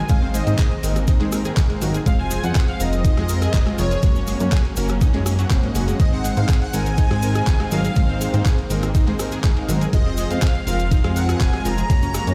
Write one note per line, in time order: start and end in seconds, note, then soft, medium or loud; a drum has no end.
0.00 2.02 D#3 medium
0.00 2.02 C4 medium
0.00 0.12 G#5 loud
0.09 0.41 G#1 loud
0.09 0.44 G#3 medium
0.09 0.14 G#3 medium
0.09 2.04 A#3 medium
0.09 0.44 C4 medium
0.09 0.44 D#4 medium
0.09 0.14 G#4 medium
0.09 0.44 C5 loud
0.09 0.35 F5 loud
0.09 kick loud
0.09 closed hi-hat medium
0.09 ride medium
0.09 cabasa medium
0.22 0.30 C4 medium
0.22 0.30 C5 medium
0.34 0.46 G#3 medium
0.34 0.46 G#4 medium
0.34 1.04 D#5 medium
0.34 open hi-hat loud
0.34 cabasa loud
0.47 0.56 G#2 loud
0.47 0.70 G#3 medium
0.47 0.70 C4 medium
0.47 0.70 D#4 medium
0.47 0.70 C5 medium
0.47 closed hi-hat medium
0.47 cabasa soft
0.58 0.67 G#4 loud
0.58 0.67 G#5 medium
0.58 kick loud
0.58 clap loud
0.58 closed hi-hat medium
0.58 ride medium
0.58 cabasa medium
0.71 closed hi-hat soft
0.83 1.15 G#1 loud
0.83 0.98 G#3 medium
0.83 0.98 C4 medium
0.83 0.98 D#4 medium
0.83 0.98 A#4 loud
0.83 open hi-hat loud
0.83 cabasa medium
0.96 cross-stick medium
0.96 closed hi-hat medium
0.96 cabasa soft
1.07 1.30 G#3 medium
1.07 1.30 C4 medium
1.07 1.30 D#4 medium
1.07 1.13 D#4 medium
1.07 1.30 C5 medium
1.07 1.13 D#5 medium
1.07 kick loud
1.07 closed hi-hat medium
1.07 ride medium
1.07 cabasa medium
1.21 1.52 G#2 medium
1.21 1.28 G#3 loud
1.21 1.28 G#4 medium
1.21 clap soft
1.21 closed hi-hat soft
1.32 1.67 G#3 medium
1.32 1.67 C4 medium
1.32 1.67 D#4 medium
1.32 1.67 A#4 medium
1.32 cross-stick medium
1.32 open hi-hat loud
1.32 cabasa loud
1.45 1.50 G#4 medium
1.45 1.50 G#5 medium
1.45 closed hi-hat medium
1.45 cabasa soft
1.57 1.66 G#1 medium
1.57 1.62 G#4 medium
1.57 1.62 G#5 medium
1.57 kick loud
1.57 clap loud
1.57 closed hi-hat medium
1.57 ride medium
1.57 cabasa medium
1.70 1.80 G#3 medium
1.70 1.81 G#3 medium
1.70 1.80 C4 medium
1.70 1.80 D#4 medium
1.70 1.81 G#4 medium
1.70 1.80 F5 loud
1.70 closed hi-hat soft
1.82 2.00 G#1 loud
1.82 1.90 F#3 medium
1.82 1.97 G#3 loud
1.82 1.97 C4 medium
1.82 1.97 D#4 medium
1.82 1.90 F#4 medium
1.82 1.97 A#4 loud
1.82 open hi-hat loud
1.82 cabasa medium
1.94 2.02 G#4 medium
1.94 2.02 G#5 medium
1.94 closed hi-hat medium
1.94 cabasa soft
2.06 2.38 F1 loud
2.06 4.01 F3 medium
2.06 2.41 G#3 medium
2.06 4.01 G#3 medium
2.06 2.11 G#3 medium
2.06 2.41 C4 medium
2.06 4.01 C4 medium
2.06 2.41 F4 medium
2.06 2.11 G#4 medium
2.06 2.41 C5 loud
2.06 2.19 F5 loud
2.06 kick loud
2.06 closed hi-hat medium
2.06 ride medium
2.06 cabasa medium
2.19 2.26 C4 medium
2.19 2.26 C5 medium
2.19 2.44 G#5 loud
2.31 2.43 G#3 medium
2.31 2.43 G#4 medium
2.31 open hi-hat loud
2.31 cabasa loud
2.44 2.52 F2 loud
2.44 2.67 G#3 medium
2.44 2.67 C4 medium
2.44 2.67 F4 medium
2.44 2.67 C5 loud
2.44 2.66 F#5 loud
2.44 closed hi-hat medium
2.44 cabasa soft
2.55 2.63 G#4 loud
2.55 2.63 G#5 medium
2.55 kick loud
2.55 clap loud
2.55 closed hi-hat medium
2.55 ride medium
2.55 cabasa medium
2.68 2.80 F5 loud
2.68 closed hi-hat soft
2.80 3.12 F1 medium
2.80 2.95 G#3 loud
2.80 2.95 C4 medium
2.80 2.95 F4 medium
2.80 2.95 A#4 loud
2.80 3.81 D#5 loud
2.80 open hi-hat loud
2.80 cabasa medium
2.93 closed hi-hat medium
2.93 cabasa soft
3.05 3.27 G#3 medium
3.05 3.27 C4 medium
3.05 3.09 D#4 medium
3.05 3.27 F4 medium
3.05 3.27 C5 medium
3.05 3.09 D#5 medium
3.05 kick loud
3.05 closed hi-hat medium
3.05 ride medium
3.05 cabasa medium
3.17 3.49 F2 medium
3.17 3.25 G#3 loud
3.17 3.25 G#4 medium
3.17 cross-stick medium
3.17 closed hi-hat soft
3.29 3.64 G#3 medium
3.29 3.63 C4 medium
3.29 3.64 F4 medium
3.29 3.64 A#4 medium
3.29 open hi-hat loud
3.29 cabasa loud
3.42 3.46 G#4 medium
3.42 3.46 G#5 medium
3.42 cross-stick medium
3.42 closed hi-hat medium
3.42 cabasa soft
3.54 3.63 F1 medium
3.54 3.59 G#4 medium
3.54 3.59 G#5 medium
3.54 kick loud
3.54 clap loud
3.54 closed hi-hat medium
3.54 ride medium
3.54 cabasa medium
3.67 3.77 G#3 medium
3.67 3.77 C4 medium
3.67 3.77 F4 medium
3.67 3.77 G#4 medium
3.67 3.77 F5 loud
3.67 cross-stick medium
3.67 clap soft
3.67 closed hi-hat soft
3.78 3.97 F1 loud
3.78 3.86 F3 medium
3.78 3.93 G#3 loud
3.78 3.93 C4 medium
3.78 3.93 F4 medium
3.78 3.86 F4 medium
3.78 3.93 A#4 loud
3.78 4.48 C#5 medium
3.78 open hi-hat loud
3.78 cabasa medium
3.91 3.98 G#4 medium
3.91 3.98 G#5 medium
3.91 closed hi-hat medium
3.91 cabasa soft
4.03 4.35 F#1 loud
4.03 5.98 F#3 medium
4.03 4.08 G#3 medium
4.03 4.37 A#3 medium
4.03 5.98 A#3 medium
4.03 5.98 C#4 medium
4.03 4.37 C#4 medium
4.03 4.37 F#4 medium
4.03 4.08 G#4 medium
4.03 4.37 C#5 loud
4.03 kick loud
4.03 closed hi-hat medium
4.03 ride medium
4.03 cabasa medium
4.16 4.23 C#4 medium
4.16 4.23 C#5 medium
4.16 cabasa soft
4.27 4.39 G#3 medium
4.27 4.39 G#4 medium
4.27 open hi-hat loud
4.27 cabasa medium
4.40 4.49 F#2 loud
4.40 4.63 A#3 medium
4.40 4.63 C#4 medium
4.40 4.63 F#4 medium
4.40 4.63 C#5 loud
4.40 closed hi-hat medium
4.40 cabasa soft
4.52 4.60 G#4 loud
4.52 4.60 G#5 medium
4.52 kick loud
4.52 clap loud
4.52 closed hi-hat medium
4.52 ride medium
4.52 cabasa medium
4.65 closed hi-hat soft
4.76 5.09 F#1 medium
4.76 4.92 A#3 loud
4.76 4.92 C#4 medium
4.76 4.92 F#4 medium
4.76 4.92 A#4 loud
4.76 open hi-hat loud
4.76 cabasa medium
4.88 cross-stick medium
4.88 closed hi-hat soft
4.88 cabasa soft
5.01 5.24 A#3 medium
5.01 5.24 C#4 medium
5.01 5.06 D#4 medium
5.01 5.24 F#4 medium
5.01 5.24 C#5 medium
5.01 5.06 D#5 medium
5.01 kick loud
5.01 closed hi-hat medium
5.01 ride medium
5.01 cabasa medium
5.14 5.45 F#2 medium
5.14 5.21 G#3 loud
5.14 5.21 G#4 medium
5.14 clap soft
5.14 closed hi-hat soft
5.26 cross-stick medium
5.26 open hi-hat loud
5.26 cabasa loud
5.39 5.46 F#3 medium
5.39 5.59 A#3 medium
5.39 5.59 C#4 medium
5.39 5.59 F#4 medium
5.39 5.46 F#4 medium
5.39 5.59 F#5 medium
5.39 closed hi-hat soft
5.39 cabasa soft
5.50 5.60 F#1 medium
5.50 5.62 C4 medium
5.50 5.62 C5 medium
5.50 kick loud
5.50 clap loud
5.50 closed hi-hat medium
5.50 ride medium
5.50 cabasa medium
5.63 5.68 G#2 medium
5.63 5.68 G#3 medium
5.63 5.72 A#3 loud
5.63 5.72 C#4 medium
5.63 5.72 F#4 medium
5.63 5.72 D#5 loud
5.63 closed hi-hat soft
5.75 5.93 F#1 loud
5.75 5.87 G#3 medium
5.75 5.97 A#3 medium
5.75 5.97 C#4 medium
5.75 5.97 F#4 medium
5.75 5.87 G#4 medium
5.75 5.97 F#5 loud
5.75 open hi-hat loud
5.75 cabasa loud
5.88 5.99 G#3 medium
5.88 5.99 G#4 medium
5.88 closed hi-hat soft
5.88 cabasa soft
6.00 6.32 G#1 loud
6.00 9.89 D#3 medium
6.00 7.94 G#3 medium
6.00 6.34 G#3 medium
6.00 6.04 G#3 medium
6.00 9.89 C4 medium
6.00 6.34 C4 medium
6.00 6.34 D#4 medium
6.00 6.04 G#4 medium
6.00 6.34 C5 loud
6.00 6.13 D#5 loud
6.00 kick loud
6.00 closed hi-hat medium
6.00 ride medium
6.00 cabasa soft
6.13 6.20 C4 medium
6.13 6.20 C5 medium
6.13 6.38 F#5 loud
6.24 6.36 G#3 medium
6.24 6.36 G#4 medium
6.24 open hi-hat loud
6.24 cabasa medium
6.37 6.46 G#2 loud
6.37 6.60 G#3 medium
6.37 6.60 C4 medium
6.37 6.60 D#4 medium
6.37 6.60 C5 loud
6.37 6.48 F5 loud
6.37 closed hi-hat medium
6.37 cabasa soft
6.49 6.57 G#4 loud
6.49 6.57 G#5 medium
6.49 kick loud
6.49 clap loud
6.49 closed hi-hat medium
6.49 ride medium
6.49 cabasa soft
6.62 6.74 F#5 loud
6.62 closed hi-hat soft
6.73 7.05 G#1 loud
6.73 6.88 G#3 medium
6.73 6.88 C4 medium
6.73 6.88 D#4 medium
6.73 6.88 A#4 loud
6.73 7.75 G#5 loud
6.73 open hi-hat loud
6.73 cabasa medium
6.86 closed hi-hat soft
6.86 cabasa soft
6.98 7.20 G#3 medium
6.98 7.20 C4 medium
6.98 7.03 D#4 medium
6.98 7.20 D#4 medium
6.98 7.20 C5 medium
6.98 7.03 D#5 medium
6.98 kick loud
6.98 closed hi-hat medium
6.98 ride medium
6.98 cabasa medium
7.11 7.42 G#2 medium
7.11 7.18 G#3 loud
7.11 7.18 G#4 medium
7.11 cross-stick medium
7.11 closed hi-hat soft
7.22 7.57 G#3 medium
7.22 7.57 C4 medium
7.22 7.57 D#4 medium
7.22 7.57 A#4 medium
7.22 open hi-hat loud
7.22 cabasa medium
7.35 7.40 G#4 medium
7.35 7.40 G#5 medium
7.35 cross-stick medium
7.35 closed hi-hat medium
7.35 cabasa soft
7.47 7.57 G#1 medium
7.47 7.52 G#4 medium
7.47 7.52 G#5 medium
7.47 kick loud
7.47 clap loud
7.47 closed hi-hat medium
7.47 ride medium
7.47 cabasa medium
7.60 7.70 G#3 medium
7.60 7.71 G#3 medium
7.60 7.70 C4 medium
7.60 7.70 D#4 medium
7.60 7.71 G#4 medium
7.60 7.70 F5 loud
7.60 cross-stick medium
7.60 clap soft
7.60 closed hi-hat soft
7.71 7.90 G#1 loud
7.71 7.80 F#3 medium
7.71 7.87 G#3 loud
7.71 7.87 C4 medium
7.71 7.87 D#4 medium
7.71 7.80 F#4 medium
7.71 7.87 A#4 loud
7.71 8.42 F5 loud
7.71 open hi-hat loud
7.71 cabasa medium
7.84 7.92 G#4 medium
7.84 7.92 G#5 medium
7.84 closed hi-hat soft
7.84 cabasa soft
7.95 8.28 G#1 loud
7.95 8.31 G#3 medium
7.95 8.01 G#3 medium
7.95 9.91 A#3 medium
7.95 8.31 C4 medium
7.95 8.31 D#4 medium
7.95 8.01 G#4 medium
7.95 8.31 C5 loud
7.95 kick loud
7.95 closed hi-hat medium
7.95 ride medium
7.95 cabasa medium
8.09 8.16 C4 medium
8.09 8.16 C5 medium
8.21 8.33 G#3 medium
8.21 8.33 G#4 medium
8.21 open hi-hat loud
8.21 cabasa medium
8.34 8.42 G#2 loud
8.34 8.57 G#3 medium
8.34 8.57 C4 medium
8.34 8.57 D#4 medium
8.34 8.57 C5 loud
8.34 closed hi-hat medium
8.34 cabasa soft
8.46 8.53 G#4 loud
8.46 8.53 G#5 medium
8.46 kick loud
8.46 clap loud
8.46 closed hi-hat medium
8.46 ride medium
8.46 cabasa medium
8.58 closed hi-hat soft
8.70 9.02 G#1 medium
8.70 8.85 G#3 loud
8.70 8.85 C4 medium
8.70 8.85 D#4 medium
8.70 8.85 A#4 loud
8.70 open hi-hat loud
8.70 cabasa medium
8.83 cross-stick medium
8.83 closed hi-hat medium
8.83 cabasa soft
8.95 9.17 G#3 medium
8.95 9.17 C4 medium
8.95 9.17 D#4 medium
8.95 8.99 D#4 medium
8.95 9.17 C5 medium
8.95 8.99 D#5 medium
8.95 kick loud
8.95 closed hi-hat medium
8.95 ride medium
8.95 cabasa medium
9.07 9.39 G#2 medium
9.07 9.15 G#3 loud
9.07 9.15 G#4 medium
9.07 clap soft
9.07 closed hi-hat soft
9.19 9.54 G#3 medium
9.19 9.54 C4 medium
9.19 9.54 D#4 medium
9.19 9.54 A#4 medium
9.19 cross-stick medium
9.19 open hi-hat loud
9.19 cabasa medium
9.32 9.37 G#4 medium
9.32 9.37 G#5 medium
9.32 closed hi-hat medium
9.32 cabasa soft
9.44 9.53 G#1 medium
9.44 9.49 G#4 medium
9.44 9.49 G#5 medium
9.44 kick loud
9.44 clap loud
9.44 closed hi-hat medium
9.44 ride medium
9.44 cabasa soft
9.57 9.67 G#3 medium
9.57 9.68 G#3 medium
9.57 9.67 C4 medium
9.57 9.67 D#4 medium
9.57 9.68 G#4 medium
9.57 9.67 F5 loud
9.57 closed hi-hat soft
9.68 9.87 G#1 loud
9.68 9.76 F#3 medium
9.68 9.83 G#3 loud
9.68 9.83 C4 medium
9.68 9.83 D#4 medium
9.68 9.76 F#4 medium
9.68 9.83 A#4 loud
9.68 open hi-hat loud
9.68 cabasa loud
9.81 9.89 G#4 medium
9.81 9.89 G#5 medium
9.81 closed hi-hat medium
9.81 cabasa soft
9.93 10.25 F1 loud
9.93 11.88 F3 medium
9.93 11.88 G#3 medium
9.93 10.27 G#3 medium
9.93 9.98 G#3 medium
9.93 11.88 C4 medium
9.93 10.27 C4 medium
9.93 10.27 F4 medium
9.93 9.98 G#4 medium
9.93 10.27 C5 loud
9.93 10.05 D#5 medium
9.93 kick loud
9.93 closed hi-hat medium
9.93 ride medium
9.93 cabasa soft
10.06 10.13 C4 medium
10.06 10.13 C5 medium
10.06 10.31 D#5 medium
10.17 10.30 G#3 medium
10.17 10.30 G#4 medium
10.17 open hi-hat loud
10.17 cabasa medium
10.30 10.39 F2 loud
10.30 10.54 G#3 medium
10.30 10.54 C4 medium
10.30 10.54 F4 medium
10.30 10.54 C5 loud
10.30 10.66 F5 loud
10.30 closed hi-hat medium
10.30 cabasa soft
10.42 10.50 G#4 loud
10.42 10.50 G#5 medium
10.42 kick loud
10.42 clap loud
10.42 closed hi-hat medium
10.42 ride medium
10.42 cabasa soft
10.55 closed hi-hat soft
10.67 10.99 F1 medium
10.67 10.82 G#3 loud
10.67 10.82 C4 medium
10.67 10.82 F4 medium
10.67 10.82 A#4 loud
10.67 11.18 F5 loud
10.67 open hi-hat loud
10.67 cabasa medium
10.79 closed hi-hat medium
10.79 cabasa soft
10.91 11.14 G#3 medium
10.91 11.14 C4 medium
10.91 10.96 D#4 medium
10.91 11.14 F4 medium
10.91 11.14 C5 medium
10.91 10.96 D#5 medium
10.91 kick loud
10.91 closed hi-hat medium
10.91 ride medium
10.91 cabasa medium
11.04 11.36 F2 medium
11.04 11.12 G#3 loud
11.04 11.12 G#4 medium
11.04 cross-stick medium
11.04 closed hi-hat soft
11.16 11.50 G#3 medium
11.16 11.50 C4 medium
11.16 11.50 F4 medium
11.16 11.50 A#4 medium
11.16 11.41 F#5 loud
11.16 open hi-hat loud
11.16 cabasa medium
11.29 11.33 G#4 medium
11.29 11.33 G#5 medium
11.29 cross-stick medium
11.29 closed hi-hat medium
11.29 cabasa soft
11.40 11.50 F1 medium
11.40 11.45 G#4 medium
11.40 11.45 G#5 medium
11.40 11.64 G#5 loud
11.40 kick loud
11.40 clap loud
11.40 closed hi-hat medium
11.40 ride medium
11.40 cabasa soft
11.53 11.63 G#3 medium
11.53 11.64 G#3 medium
11.53 11.63 C4 medium
11.53 11.63 F4 medium
11.53 11.64 G#4 medium
11.53 11.63 F5 loud
11.53 cross-stick medium
11.53 clap soft
11.53 closed hi-hat soft
11.65 11.84 F1 loud
11.65 11.73 F3 medium
11.65 11.80 G#3 loud
11.65 11.80 C4 medium
11.65 11.80 F4 medium
11.65 11.73 F4 medium
11.65 11.80 A#4 loud
11.65 12.34 A#5 loud
11.65 open hi-hat loud
11.65 cabasa medium
11.78 11.85 G#4 medium
11.78 11.85 G#5 medium
11.78 closed hi-hat medium
11.78 cabasa soft
11.90 12.22 F#1 loud
11.90 12.34 F#3 medium
11.90 11.95 G#3 medium
11.90 12.34 A#3 medium
11.90 12.24 A#3 medium
11.90 12.34 C#4 medium
11.90 12.24 C#4 medium
11.90 12.24 F#4 medium
11.90 11.95 G#4 medium
11.90 12.24 C#5 loud
11.90 kick loud
11.90 closed hi-hat medium
11.90 ride medium
11.90 cabasa soft
12.03 12.10 C#4 medium
12.03 12.10 C#5 medium
12.03 closed hi-hat soft
12.03 cabasa soft
12.14 12.26 G#3 medium
12.14 12.26 G#4 medium
12.14 cross-stick medium
12.14 open hi-hat loud
12.14 cabasa medium
12.27 12.34 F#2 loud
12.27 12.34 A#3 medium
12.27 12.34 C#4 medium
12.27 12.34 F#4 medium
12.27 12.34 C#5 loud
12.27 closed hi-hat medium
12.27 cabasa soft